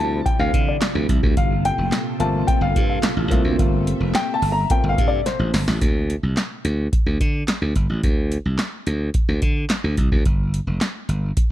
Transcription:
Already playing: D2 C3 F3 G3 C4 E4 A5
0.26 G5, kick, closed hi-hat
0.39 D2 F5
0.54 D3, kick, closed hi-hat
0.69 D5
0.81 snare, clap, closed hi-hat
0.95 D2
1.09 C2, kick, closed hi-hat
1.23 D2, kick
1.37 G1 A#2 C3 F4 A4 F5, kick, closed hi-hat
1.65 G5, closed hi-hat
1.78 F1
1.92 snare, clap, closed hi-hat
2.20 G1 A3 A#3 C4 F4 A5, closed hi-hat
2.47 G5, kick, closed hi-hat
2.61 G1 F5
2.76 G2, kick, closed hi-hat
2.90 F5
3.03 snare, clap, closed hi-hat
3.17 A1
3.30 C2 A3 A#3 C4 F4, kick, closed hi-hat
3.44 D2
3.58 G1 A3 A#3 C4 F4 E5, kick, closed hi-hat
3.87 closed hi-hat
4.00 F1
4.15 G5, snare, clap, closed hi-hat
4.34 A5
4.42 G1, open hi-hat
4.52 A#5
4.70 A3 A#3 C4 F4 G5, kick, closed hi-hat
4.84 G1
4.89 F5
4.98 G2, kick, closed hi-hat
5.08 D5
5.26 C5, snare, closed hi-hat
5.39 A1
5.54 G1, snare, open hi-hat
5.68 A1, snare
5.81 D2, kick, closed hi-hat
6.10 closed hi-hat
6.23 C2
6.37 snare, clap, closed hi-hat
6.65 D2, closed hi-hat
6.93 kick, closed hi-hat
7.06 D2
7.20 D3, kick, closed hi-hat
7.48 snare, clap, closed hi-hat
7.62 D2
7.75 G1, kick, closed hi-hat
7.89 A1
8.03 D2, kick, closed hi-hat
8.32 closed hi-hat
8.45 C2
8.59 snare, clap, closed hi-hat
8.87 D2, closed hi-hat
9.14 kick, closed hi-hat
9.29 D2
9.42 D3, kick, closed hi-hat
9.70 snare, clap, closed hi-hat
9.84 D2
9.97 C2, kick, closed hi-hat
10.12 D2, kick
10.26 G1, kick, closed hi-hat
10.54 closed hi-hat
10.67 F1
10.81 snare, clap, closed hi-hat
11.09 G1, closed hi-hat
11.37 kick, closed hi-hat

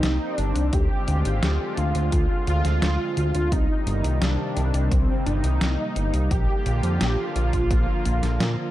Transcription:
Already playing: D#3 A#3 C4 D#4 G4
0.03 C2, snare, closed hi-hat
0.35 G1 D4, closed hi-hat
0.55 C2, closed hi-hat
0.73 D2 D3 G#3 F4 G4, kick, closed hi-hat
1.08 D2, closed hi-hat
1.25 G#1, closed hi-hat
1.43 D2, snare, closed hi-hat
1.77 D2 F4, closed hi-hat
1.95 D2, closed hi-hat
2.12 D2, kick, closed hi-hat
2.47 D2 F4, closed hi-hat
2.65 D2, snare, closed hi-hat
2.82 D2, snare, closed hi-hat
3.17 D2, closed hi-hat
3.35 D2, closed hi-hat
3.52 C2 C3 D#3 G3 A#3 D#4, kick, closed hi-hat
3.87 G1, closed hi-hat
4.04 C2, closed hi-hat
4.21 C2 D4, snare, closed hi-hat
4.57 C2, closed hi-hat
4.74 C2, closed hi-hat
4.91 C2 C4, kick, closed hi-hat
5.26 G1 D#4, closed hi-hat
5.44 C2, closed hi-hat
5.61 C2, snare, closed hi-hat
5.96 G1, closed hi-hat
6.14 C2, closed hi-hat
6.31 A#1 D3 F3 F4 G4, kick, closed hi-hat
6.66 A#1, closed hi-hat
6.83 F2, closed hi-hat
7.01 A#1, snare, closed hi-hat
7.36 A#1 F4, closed hi-hat
7.53 A#1, kick, closed hi-hat
7.71 A#1, kick, closed hi-hat
8.05 A#1, closed hi-hat
8.23 A#1, snare, closed hi-hat
8.40 A#2, snare, closed hi-hat

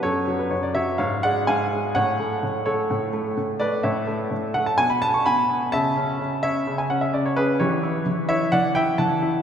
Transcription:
0.03 F#2 A4 C#5
0.28 F#3
0.39 B4
0.51 F#2 C#5
0.63 D5
0.75 F#3 C#5 E5
0.98 G#2 C#5 F5
1.23 G#3 D5 F#5
1.47 G#2 F5 G#5
1.72 G#3
1.95 A2 C#5 F#5
2.20 A3
2.43 A2
2.66 A3 A4 C#5
2.91 A2
3.13 A3
3.37 A2
3.60 A3 B4 D5
3.83 A2 C#5 E5
4.07 A3
4.31 A2
4.54 A3 F#5
4.66 A5
4.78 B2 G#5
4.90 B5
5.02 B3 A5
5.14 C#6
5.26 B2 G#5 B5
5.50 B3
5.72 C#3 E5 A5
5.96 C#4
6.20 C#3
6.43 C#4 C#5 E5
6.67 C#3
6.78 G#5
6.90 C#4 F#5
7.01 E5
7.14 C#3 D5
7.26 C#5
7.36 C#4 G#4 B4
7.60 E3 G4 C#5
7.83 E4
8.06 E3
8.29 E4 C#5 E5
8.52 E3 D5 F#5
8.75 E4 E5 G5
8.98 E3 F#5 A5
9.22 E4

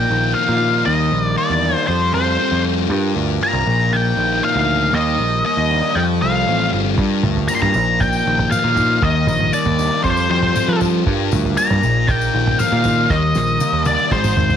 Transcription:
Already playing: A#2 F3 A#3 D#4 A#4 G5
0.10 A#1 D#3
0.34 F3 F5
0.49 A#2
0.61 D#3
0.85 D#2 D#3 G3 A#3 D#4 D#5
1.12 A#1
1.24 D5
1.37 A#3 D5
1.50 E2
1.63 D4
1.87 F2 F3 C4 F4 A4 C5
2.14 F2 G3 C5
2.39 C4
2.52 F2
2.64 G3
2.90 G2 D4 A#4
3.15 D2
3.41 A#3 A#5
3.53 C2
3.66 A#1 A#2 F3 A#3 D#4
3.91 A#3 G5
4.17 A#1 D#3
4.43 F3 F5
4.56 D2
4.68 D#3
4.93 D#2 D#3 G3 A#3 D#5
5.19 A#1
5.45 A#3 D#5
5.57 D#2
5.70 D4
5.95 F2 F3 C4 F4 A4 G5
6.22 C2 G3 F5
6.48 A1 C4
6.73 G1 G3
6.98 G2 D4 A#4, kick, floor tom
7.23 D2, floor tom, mid tom
7.37 floor tom
7.48 A#3 A#5, tambourine
7.55 C6
7.62 G2 A#5, floor tom
7.74 A#1 A#2 F3 A#3 D#4, tambourine
8.00 A#3 G5, kick, floor tom, tambourine
8.13 tambourine
8.26 A#1 D#3
8.39 floor tom
8.51 F3 F5, mid tom, tambourine
8.64 A#2
8.77 D#3, floor tom, tambourine
9.02 D#2 D#3 G3 A#3 D#5, kick, floor tom
9.27 A#1, floor tom, mid tom, tambourine
9.40 floor tom
9.53 A#3 D5, tambourine
9.66 D#2, floor tom
9.79 D4, tambourine
10.04 F2 F3 G3 C4 F4 A4 C5, kick, floor tom, tambourine
10.17 tambourine
10.29 F2 G3 C5
10.43 floor tom
10.55 C4, mid tom, tambourine
10.68 F3
10.80 G3, floor tom, tambourine
11.05 G2 D4 A#4, kick, floor tom
11.32 D2, floor tom, mid tom, tambourine
11.45 floor tom
11.57 A#3 A#5, tambourine
11.71 G2, floor tom
11.82 A#1 A#2 F3 A#3 D#4, tambourine
12.08 A#3 G5, kick, floor tom, tambourine
12.21 tambourine
12.33 A#1 D#3
12.47 floor tom
12.59 F3 F5, mid tom, tambourine
12.72 A#2
12.84 D#3, floor tom, tambourine
13.10 D#2 D#3 G3 A#3 D#4 D#5, kick, snare, tambourine
13.35 A#1, snare, tambourine
13.47 tambourine
13.60 A#3, high tom, tambourine
13.73 D#2
13.85 D4 D5, high tom, tambourine
13.99 tambourine
14.11 G#1 G#2 G#3 C4 C5, kick, mid tom, tambourine
14.24 mid tom, tambourine
14.36 G#1 D#3, mid tom, tambourine
14.50 mid tom, tambourine

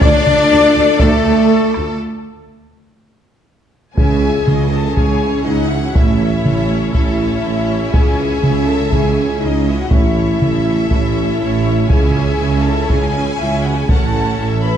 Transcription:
Already playing: F4
0.00 D2 A3 D4 A4 D5, taiko
0.26 D2, taiko mid
0.52 D2
0.77 D2
0.99 D2 A3 A4, taiko
1.26 D2
1.74 D2, taiko rim
3.96 C#2 C#3 E3 C#4 E4 G#4 C#5 E5 G#5, taiko
4.20 E3 C#4
4.46 C#2 C#3 E3 C#4 D#5, taiko mid
4.70 E3 C#4 A4 A5
4.94 C#2 C#3 E3 C#4 G#4 C#5 G#5, taiko
5.21 E3 C#4
5.45 C#2 C#3 E3 C#4 D#4 D#5 F#5
5.71 E3 C#4 E4 E5
5.81 F#4 F#5
5.94 A1 A2 E3 C#4 E4 A4 E5, taiko
6.21 E3 C#4
6.44 A1 A2 E3 C#4 C#5, taiko mid
6.69 E3 C#4
6.93 A1 A2 E3 C#4 E4 A4 E5, taiko
7.21 E3 C#4
7.43 A1 A2 E3 C#4 C#5
7.70 E3 C#4
7.92 C#2 C#3 E3 C#4 G#4 E5 G#5, taiko
8.19 E3 C#4
8.43 C#2 C#3 E3 C#4, taiko mid
8.68 E3 C#4 A4 A5
8.90 C#2 C#3 E3 C#4 G#4 G#5, taiko
9.16 E3 C#4
9.40 C#2 C#3 E3 C#4 D#4 D#5
9.44 D#5
9.66 E3 C#4 E4 E5
9.79 F#4 F#5
9.89 A1 A2 E3 C#4 E4 A4 C#5 E5, taiko
10.16 E3 C#4
10.41 A1 A2 E3 C#4 E5, taiko mid
10.66 E3 C#4
10.90 A1 A2 E3 C#4 E4 E5, taiko
11.16 E3 C#4
11.40 A1 A2 E3 C#4 C#5
11.66 E3 C#4
11.88 C#2 C#3 E3 C#4 G#4 E5 G#5, taiko
12.16 E3 C#4
12.39 C#2 C#3 E3 C#4
12.64 E3 C#4 A4 A5
12.89 C#2 C#3 E3 C#4 G#4 G#5, taiko
13.16 E3 C#4
13.39 C#2 C#3 E3 C#4 E4 E5
13.63 E3 C#4 F#4 F#5
13.77 G#4 G#5
13.87 A1 A2 E3 C#4 A4 A5, taiko
13.91 F#5
14.15 E3 C#4
14.39 A1 A2 E3 C#4 E5
14.63 E3 C#4 B4 B5

